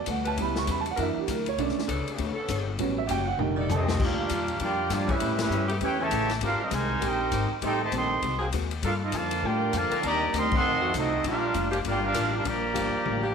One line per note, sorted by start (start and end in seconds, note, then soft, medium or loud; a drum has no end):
0.06 0.36 D2 loud
0.06 0.27 G3 medium
0.06 0.27 B3 medium
0.06 0.28 F#4 medium
0.06 0.28 A4 medium
0.06 kick soft
0.06 hi-hat pedal medium
0.06 ride medium
0.11 0.27 F#5 medium
0.25 0.65 G3 medium
0.25 0.65 C#4 medium
0.25 0.65 E4 medium
0.25 0.65 B4 loud
0.25 0.38 A5 medium
0.25 ride medium
0.37 0.67 C#2 medium
0.37 0.57 C#3 medium
0.37 0.58 G3 medium
0.37 0.85 G3 medium
0.37 0.58 B3 medium
0.37 0.85 B3 soft
0.37 0.59 E4 medium
0.37 kick soft
0.37 ride medium
0.41 0.86 E4 medium
0.41 0.58 B5 medium
0.56 0.69 C#6 loud
0.56 snare medium
0.66 0.97 E2 loud
0.66 0.87 C#3 medium
0.66 0.88 G3 medium
0.66 0.88 B3 medium
0.66 0.88 E4 medium
0.66 kick soft
0.66 hi-hat pedal medium
0.66 ride medium
0.71 0.79 B5 medium
0.81 0.89 A5 medium
0.86 ride medium
0.91 0.99 F#5 medium
0.97 1.15 F#2 medium
0.97 1.21 E3 soft
0.97 1.17 F#3 soft
0.97 1.10 F#3 medium
0.97 1.21 A#3 soft
0.97 1.10 D4 medium
0.97 1.18 D4 soft
0.97 1.10 E4 medium
0.97 1.18 E4 medium
0.97 1.10 A#4 loud
0.97 1.18 A#4 medium
0.97 kick soft
0.97 ride medium
1.01 1.21 D4 medium
1.01 1.18 E5 medium
1.17 1.29 G4 medium
1.17 muted upright bass stroke soft
1.28 1.57 D2 loud
1.28 1.48 F#3 medium
1.28 1.48 D4 medium
1.28 1.48 E4 medium
1.28 1.48 A#4 medium
1.28 1.47 A#4 medium
1.28 kick soft
1.28 hi-hat pedal medium
1.28 ride medium
1.46 1.59 C#5 medium
1.46 ride medium
1.58 1.76 B1 medium
1.58 1.81 D3 medium
1.58 1.81 A3 medium
1.58 1.78 B3 medium
1.58 1.81 C#4 medium
1.58 1.79 D4 medium
1.58 1.79 A4 medium
1.58 1.79 C#5 medium
1.58 2.16 D5 medium
1.58 kick soft
1.58 ride medium
1.69 snare soft
1.77 muted upright bass stroke soft
1.77 snare medium
1.87 2.06 C#2 loud
1.87 2.33 C#3 medium
1.87 2.33 D3 medium
1.87 2.08 B3 medium
1.87 2.33 B3 medium
1.87 2.08 D4 medium
1.87 2.08 A4 medium
1.87 2.34 A4 medium
1.87 2.08 C#5 medium
1.87 kick soft
1.87 hi-hat pedal medium
1.87 ride medium
2.07 muted upright bass stroke soft
2.07 ride medium
2.18 2.35 D2 medium
2.18 2.38 B3 medium
2.18 2.39 D4 medium
2.18 2.39 A4 medium
2.18 2.39 C#5 medium
2.18 kick soft
2.18 ride medium
2.35 2.76 D3 loud
2.35 2.76 B3 medium
2.35 2.76 C#4 medium
2.35 2.76 A4 loud
2.35 muted upright bass stroke soft
2.48 2.78 G1 loud
2.48 2.69 B3 medium
2.48 2.69 D4 medium
2.48 2.69 A4 medium
2.48 2.69 C#5 medium
2.48 kick soft
2.48 hi-hat pedal medium
2.48 ride medium
2.79 3.08 A1 medium
2.79 2.99 A2 medium
2.79 3.01 F#3 medium
2.79 3.01 G3 soft
2.79 2.99 G3 medium
2.79 3.02 B3 medium
2.79 3.02 C#4 medium
2.79 3.00 C#4 medium
2.79 3.00 F#4 medium
2.79 kick soft
2.79 ride medium
2.98 3.09 E5 medium
3.07 3.38 F#1 loud
3.07 3.29 A2 medium
3.07 3.30 G3 medium
3.07 3.39 B3 medium
3.07 3.38 C#4 medium
3.07 3.39 F#4 medium
3.07 3.39 G4 medium
3.07 3.28 G5 loud
3.07 kick soft
3.07 hi-hat pedal medium
3.07 ride medium
3.11 3.30 C#4 medium
3.11 3.30 F#4 medium
3.28 3.39 F#5 medium
3.38 3.68 F1 medium
3.38 3.59 F2 soft
3.38 3.96 D#3 medium
3.38 3.59 D#3 medium
3.38 3.97 G3 soft
3.38 3.97 A3 soft
3.38 3.59 A3 medium
3.38 3.60 D4 medium
3.38 3.97 D#4 medium
3.38 3.68 G5 medium
3.38 mid tom medium
3.56 3.97 D#3 loud
3.56 3.97 A3 loud
3.56 3.97 A4 loud
3.56 3.97 D5 medium
3.70 3.98 C2 medium
3.70 3.89 F2 medium
3.70 3.90 D#3 medium
3.70 3.90 A3 medium
3.70 3.99 A3 medium
3.70 3.99 C4 medium
3.70 3.90 D4 medium
3.70 3.99 D#4 medium
3.70 4.00 A4 medium
3.70 3.93 A5 medium
3.70 floor tom medium
3.70 hi-hat pedal medium
3.74 4.00 C4 medium
3.74 4.00 G4 medium
3.74 4.00 D#5 medium
3.88 snare medium
3.98 4.29 D2 medium
3.98 4.20 A#2 medium
3.98 4.45 F3 medium
3.98 4.58 G3 medium
3.98 4.20 G3 medium
3.98 4.44 A#3 medium
3.98 4.44 D4 medium
3.98 4.59 D4 medium
3.98 4.20 D4 medium
3.98 4.60 F4 medium
3.98 4.44 G4 medium
3.98 kick medium
3.98 crash loud
4.03 4.62 D4 medium
4.03 4.21 F4 medium
4.03 4.62 G4 medium
4.03 4.62 A#4 medium
4.03 4.62 F5 medium
4.29 4.59 D#2 medium
4.29 4.50 A#2 medium
4.29 4.50 G3 medium
4.29 4.50 D4 medium
4.29 4.50 F4 medium
4.29 kick soft
4.29 hi-hat pedal medium
4.29 ride medium
4.48 ride medium
4.60 4.89 F2 medium
4.60 4.80 A#2 soft
4.60 4.88 G3 medium
4.60 4.80 G3 soft
4.60 4.88 D4 medium
4.60 4.81 D4 soft
4.60 4.81 F4 medium
4.60 4.90 F4 medium
4.60 4.88 G4 medium
4.60 4.90 A#4 medium
4.60 4.90 D5 medium
4.60 kick soft
4.60 ride medium
4.64 4.90 G5 medium
4.89 5.19 G2 loud
4.89 5.10 A#2 medium
4.89 5.09 F3 medium
4.89 5.10 G3 medium
4.89 5.10 A#3 medium
4.89 5.11 D4 medium
4.89 5.10 D4 medium
4.89 5.11 F4 medium
4.89 5.10 F4 medium
4.89 5.10 G4 medium
4.89 5.10 D5 medium
4.89 kick soft
4.89 snare soft
4.89 hi-hat pedal medium
4.89 ride medium
5.07 5.15 C#3 medium
5.07 5.16 A3 medium
5.07 5.16 B3 medium
5.07 5.16 C#4 loud
5.07 5.38 E4 medium
5.07 kick medium
5.07 ride medium
5.11 5.39 G3 medium
5.11 5.39 C#4 medium
5.11 5.40 C#4 medium
5.11 5.40 G4 medium
5.11 5.40 B4 medium
5.11 5.40 E5 medium
5.20 5.49 A2 medium
5.20 5.41 A3 soft
5.20 5.41 C#4 soft
5.20 5.41 G4 medium
5.20 5.42 B4 medium
5.20 kick soft
5.20 ride medium
5.39 5.67 G3 medium
5.39 5.67 C#4 medium
5.39 5.68 C#4 medium
5.39 5.67 E4 medium
5.39 5.68 G4 medium
5.39 5.68 B4 medium
5.39 5.68 E5 medium
5.39 snare loud
5.39 ride medium
5.50 5.79 G2 loud
5.50 5.70 A3 medium
5.50 5.71 C#4 medium
5.50 5.71 G4 medium
5.50 5.71 B4 medium
5.50 hi-hat pedal medium
5.68 5.77 C#3 loud
5.68 5.76 A3 loud
5.68 5.77 B3 loud
5.68 5.77 G4 loud
5.68 ride medium
5.81 6.10 E2 medium
5.81 6.01 A3 medium
5.81 5.98 C#4 medium
5.81 6.01 C#4 soft
5.81 5.98 E4 medium
5.81 5.99 E4 medium
5.81 5.98 G4 medium
5.81 6.02 G4 medium
5.81 5.99 B4 medium
5.81 6.02 B4 medium
5.81 6.00 C#5 medium
5.81 5.99 G5 medium
5.81 kick soft
5.81 ride medium
6.00 6.30 C#3 medium
6.00 6.08 C#3 loud
6.00 6.30 E3 medium
6.00 6.08 A3 medium
6.00 6.30 A3 medium
6.00 6.08 B3 loud
6.00 6.08 C#4 loud
6.00 6.31 G4 medium
6.00 6.31 C#5 medium
6.00 6.31 E5 loud
6.00 6.31 A5 loud
6.11 6.40 A1 loud
6.11 6.30 A3 medium
6.11 6.31 C#4 medium
6.11 6.31 G4 medium
6.11 6.31 B4 medium
6.11 kick soft
6.11 hi-hat pedal medium
6.11 ride medium
6.30 snare soft
6.30 ride medium
6.41 6.58 G#1 medium
6.41 6.61 G#3 soft
6.41 6.61 C4 soft
6.41 6.60 D4 medium
6.41 6.59 F4 medium
6.41 6.62 G4 medium
6.41 6.60 G4 medium
6.41 6.62 A#4 medium
6.41 6.60 A#4 medium
6.41 6.60 F5 loud
6.41 kick soft
6.41 ride medium
6.60 6.72 G3 medium
6.60 6.72 C4 medium
6.60 6.73 C4 medium
6.60 6.72 D#4 medium
6.60 6.73 G4 medium
6.60 6.73 A#4 medium
6.60 6.73 D#5 medium
6.60 muted upright bass stroke soft
6.71 7.00 C2 loud
6.71 7.01 C3 medium
6.71 7.01 D#3 medium
6.71 6.91 G#3 medium
6.71 7.02 G#3 medium
6.71 6.91 C4 medium
6.71 7.03 D#4 medium
6.71 6.91 G4 medium
6.71 6.91 A#4 medium
6.71 7.03 A#4 medium
6.71 7.03 C5 medium
6.71 7.03 G#5 loud
6.71 kick soft
6.71 hi-hat pedal medium
6.71 ride medium
7.01 7.31 A#1 medium
7.01 7.21 G#3 soft
7.01 7.21 C4 medium
7.01 7.50 C4 medium
7.01 7.50 D#4 medium
7.01 7.50 G4 loud
7.01 7.22 G4 medium
7.01 7.22 A#4 medium
7.01 kick soft
7.01 ride medium
7.05 7.52 D#4 medium
7.05 7.52 A#4 medium
7.05 7.52 C5 medium
7.05 7.52 G5 loud
7.31 7.49 G#1 loud
7.31 7.52 G#3 medium
7.31 7.52 C4 medium
7.31 7.52 G4 medium
7.31 7.52 A#4 medium
7.31 kick soft
7.31 hi-hat pedal medium
7.31 ride medium
7.51 muted upright bass stroke soft
7.61 7.91 A1 medium
7.61 7.82 A2 medium
7.61 7.74 D#3 medium
7.61 7.82 G3 medium
7.61 7.74 A3 medium
7.61 7.74 C4 medium
7.61 7.79 C4 medium
7.61 7.83 C4 medium
7.61 7.79 D#4 medium
7.61 7.81 D#4 medium
7.61 7.83 D#4 medium
7.61 7.74 G4 medium
7.61 7.79 G4 loud
7.61 7.81 A4 loud
7.61 7.81 C5 medium
7.61 kick soft
7.61 ride medium
7.66 7.81 G5 loud
7.81 7.91 C3 medium
7.81 7.91 D#3 medium
7.81 7.92 A3 medium
7.81 7.93 G4 medium
7.81 7.93 C5 medium
7.81 7.93 D#5 medium
7.81 7.92 A5 loud
7.92 8.21 A#1 medium
7.92 8.12 A2 medium
7.92 8.37 D#3 medium
7.92 8.20 G3 medium
7.92 8.12 G3 medium
7.92 8.37 C4 medium
7.92 8.12 C4 medium
7.92 8.13 D#4 medium
7.92 8.22 A4 medium
7.92 kick soft
7.92 hi-hat pedal medium
7.92 ride medium
7.96 8.39 D#5 medium
7.96 8.22 G5 medium
7.96 8.39 C6 medium
8.22 8.52 C2 medium
8.22 8.42 G#3 medium
8.22 8.43 C4 medium
8.22 8.43 F#4 soft
8.22 8.43 A#4 medium
8.22 kick soft
8.22 ride medium
8.39 8.48 F#3 loud
8.39 8.48 A#3 loud
8.39 8.48 C4 loud
8.39 8.48 G#4 loud
8.52 8.82 D#2 medium
8.52 8.72 G#3 medium
8.52 8.73 C4 medium
8.52 8.73 F#4 medium
8.52 8.73 A#4 medium
8.52 kick soft
8.52 hi-hat pedal medium
8.52 ride medium
8.71 ride medium
8.83 9.11 G2 medium
8.83 9.02 G3 medium
8.83 9.03 A#3 medium
8.83 8.92 A#3 medium
8.83 8.92 D4 medium
8.83 8.92 F4 medium
8.83 9.03 F4 medium
8.83 8.92 A4 medium
8.83 9.04 A4 medium
8.83 8.93 A#4 medium
8.83 8.92 F5 loud
8.83 kick soft
8.83 ride medium
9.02 9.13 C4 medium
9.02 9.13 D#4 medium
9.02 9.13 F4 medium
9.02 9.13 A4 medium
9.02 9.13 D#5 medium
9.12 9.42 F2 loud
9.12 9.44 D3 medium
9.12 9.43 F3 medium
9.12 9.32 G3 medium
9.12 9.43 A#3 medium
9.12 9.33 A#3 medium
9.12 9.33 F4 medium
9.12 9.44 F4 medium
9.12 9.33 A4 medium
9.12 9.44 A#4 medium
9.12 9.43 D5 medium
9.12 9.44 A5 medium
9.12 kick soft
9.12 hi-hat pedal medium
9.12 ride medium
9.31 ride medium
9.43 9.72 A2 medium
9.43 9.63 G3 medium
9.43 9.63 A#3 medium
9.43 9.74 D4 medium
9.43 9.63 F4 medium
9.43 9.74 F4 medium
9.43 9.74 G4 medium
9.43 9.64 A4 medium
9.43 9.74 A#4 medium
9.43 9.74 D5 medium
9.43 9.74 G5 loud
9.43 kick soft
9.73 9.90 F2 loud
9.73 10.04 D3 medium
9.73 10.05 F3 loud
9.73 9.93 G3 medium
9.73 9.93 A#3 medium
9.73 10.04 A#3 medium
9.73 9.94 F4 medium
9.73 10.05 F4 medium
9.73 9.94 A4 medium
9.73 10.05 A#4 medium
9.73 10.05 D5 medium
9.73 10.05 A5 loud
9.73 kick soft
9.73 hi-hat pedal medium
9.73 ride medium
9.90 10.31 D#3 loud
9.90 10.31 C4 medium
9.90 10.31 D4 medium
9.90 10.31 A#4 loud
9.90 muted upright bass stroke soft
9.90 ride medium
10.03 10.32 D#2 medium
10.03 10.23 C3 medium
10.03 10.24 D#3 medium
10.03 10.32 D#3 loud
10.03 10.32 G3 medium
10.03 10.32 A#3 loud
10.03 10.24 A#3 medium
10.03 10.24 D4 medium
10.03 10.33 D5 loud
10.03 10.33 A#5 loud
10.03 kick soft
10.03 ride medium
10.07 10.33 G4 loud
10.07 10.33 D#5 loud
10.33 10.62 D2 loud
10.33 10.53 C3 medium
10.33 10.53 D#3 medium
10.33 10.53 G3 loud
10.33 10.54 A#3 medium
10.33 10.52 C4 medium
10.33 10.54 D4 medium
10.33 10.53 A#4 medium
10.33 10.53 D#5 medium
10.33 10.53 G5 medium
10.33 10.54 C6 loud
10.33 kick soft
10.33 hi-hat pedal medium
10.33 ride medium
10.52 10.92 D#3 loud
10.52 10.92 A3 medium
10.52 10.92 C4 loud
10.52 kick loud
10.52 crash medium
10.56 10.93 A4 loud
10.56 10.93 D#5 loud
10.56 10.93 F#5 loud
10.56 10.93 C6 loud
10.63 10.93 F2 medium
10.63 10.83 F3 soft
10.63 10.83 A3 medium
10.63 10.84 D#4 medium
10.63 10.84 F#4 medium
10.81 11.21 F3 loud
10.81 11.21 A3 medium
10.81 11.21 D#4 medium
10.81 11.21 F#4 loud
10.94 11.23 C2 medium
10.94 11.13 F3 medium
10.94 11.22 A3 medium
10.94 11.14 A3 medium
10.94 11.22 C4 medium
10.94 11.22 D#4 medium
10.94 11.14 D#4 medium
10.94 11.14 F#4 medium
10.94 kick soft
10.94 hi-hat pedal medium
10.94 ride medium
10.98 11.24 C4 medium
10.98 11.24 F#4 medium
10.98 11.24 A4 medium
10.98 11.24 D#5 loud
11.24 11.53 A#1 medium
11.24 11.44 A#2 soft
11.24 11.44 G3 soft
11.24 11.71 G3 medium
11.24 11.44 D4 medium
11.24 11.71 D4 medium
11.24 11.45 F4 medium
11.24 11.71 F4 medium
11.24 11.71 G4 medium
11.24 11.71 A#4 medium
11.24 11.71 F5 loud
11.24 kick soft
11.24 ride medium
11.54 11.84 F1 loud
11.54 11.74 A#2 medium
11.54 11.74 G3 medium
11.54 11.74 D4 medium
11.54 11.75 F4 medium
11.54 kick soft
11.54 hi-hat pedal medium
11.54 ride medium
11.71 11.80 F3 loud
11.71 11.80 A#3 loud
11.71 11.80 D4 loud
11.71 11.80 G4 loud
11.71 ride medium
11.85 12.14 G1 loud
11.85 12.04 A#2 medium
11.85 12.04 G3 medium
11.85 12.02 G3 medium
11.85 12.05 D4 soft
11.85 12.02 D4 medium
11.85 12.05 F4 medium
11.85 12.03 F4 medium
11.85 12.03 G4 medium
11.85 12.03 A#4 medium
11.85 12.03 D5 medium
11.85 12.03 G5 loud
11.85 kick soft
11.85 ride medium
12.03 12.31 G3 medium
12.03 12.31 D4 medium
12.03 12.32 D4 medium
12.03 12.31 F4 medium
12.03 12.32 G4 medium
12.03 12.32 A#4 medium
12.03 12.32 F5 loud
12.14 12.44 A1 loud
12.14 12.34 A#2 medium
12.14 12.27 F3 medium
12.14 12.34 G3 medium
12.14 12.27 A#3 medium
12.14 12.27 D4 medium
12.14 12.35 D4 medium
12.14 12.35 F4 medium
12.14 12.27 A#4 loud
12.14 kick soft
12.14 hi-hat pedal medium
12.14 ride medium
12.33 12.44 G3 medium
12.33 12.44 D4 medium
12.33 12.45 D4 medium
12.33 12.44 F4 medium
12.33 12.45 G4 medium
12.33 12.45 A#4 medium
12.33 12.45 F5 medium
12.44 12.74 A#1 medium
12.44 12.64 A#2 medium
12.44 13.34 F3 medium
12.44 12.64 G3 medium
12.44 13.34 G3 medium
12.44 13.35 A#3 medium
12.44 12.64 D4 medium
12.44 12.65 F4 medium
12.44 13.35 G4 medium
12.44 13.35 D5 medium
12.44 13.35 F5 medium
12.44 13.35 A#5 medium
12.44 kick soft
12.44 ride medium
12.74 12.92 G1 loud
12.74 12.94 A#2 medium
12.74 13.19 F3 medium
12.74 12.94 G3 medium
12.74 13.19 A#3 medium
12.74 13.19 D4 medium
12.74 12.94 D4 medium
12.74 12.95 F4 medium
12.74 13.20 G4 loud
12.74 kick soft
12.74 hi-hat pedal medium
12.74 ride medium
12.95 muted upright bass stroke soft
13.05 13.35 A1 loud
13.05 13.25 A#2 medium
13.05 13.25 G3 medium
13.05 13.25 D4 medium
13.05 13.26 F4 medium
13.05 high tom medium
13.23 13.35 F3 loud
13.23 13.35 A#3 loud
13.23 13.35 D4 medium
13.23 13.35 G4 loud